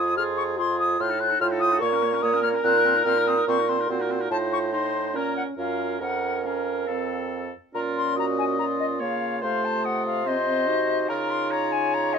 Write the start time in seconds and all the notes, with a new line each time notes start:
Already playing: F2 F4 G#4 D#6
0.17 F4 G#4 F6
0.37 C#6
0.58 F4 G#4 C6
0.80 D#6
0.99 A2 F4 C5 F6
1.09 D#4 A4
1.19 F4 C5 F#6
1.30 D#4 A4
1.40 A2 F4 C5 F6
1.50 D#4 A4
1.60 F4 C5 D#6
1.71 D#4 A4
1.80 A#2 A#3 A#4 C#5 C#6
1.93 C#4 A#4
2.03 A#3 C#5
2.13 C#4 A#4
2.22 A#2 A#3 C#5 D#6
2.33 C#4 A#4
2.42 A#3 C#5 F6
2.52 C#4 A#4
2.63 A#2 C4 C5 F#6
2.74 D#4 A#4
2.84 C4 C5
2.94 D#4 A#4
3.05 A#2 C4 C5 F6
3.15 D#4 A#4
3.27 C4 C5 D#6
3.36 D#4 A#4
3.47 A#2 C4 C5 C#6
3.58 D#4 A#4
3.68 C4 C5 C6
3.78 D#4 A#4
3.89 A#2 C4 F#4 C5
3.99 D#4 A#4
4.09 C4 C5
4.19 D#4 A#4
4.30 A2 D#4 F4 C5 A5
4.52 C#6
4.72 D#4 C5 C6
5.14 A#2 C#4 A#4 A#5
5.36 F#5
5.57 F#2 C#4 F4 A#4 F5
6.00 F2 C#4 A#4 F#5
6.44 C#4 A#4 F5
6.87 F2 C4 A4
7.74 A#2 C#4 F4 A#4 A#5
7.97 C6
8.16 F#4 D#5 A#5
8.38 G#5
8.59 F4 A#5
8.79 D#5
9.00 C#3 A#3 C#5 F5
9.42 C3 A3 F4 C5 F5
9.65 A5
9.84 D#5 F#5
10.06 F5
10.26 C4 C5 D#5
10.47 C4
10.67 D#4 F#4
11.08 C#3 F4 A#4 A#5
11.30 C6
11.51 C#5 A#5
11.72 G#5
11.94 A#5
12.13 D#5